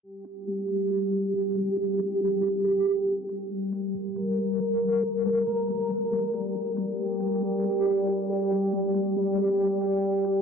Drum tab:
HH |-o-o-o-o|-o-o-o-o|-o-o-o-o|-o-o-o-o|

HH |-o-o-o-o|-o-o-o-o|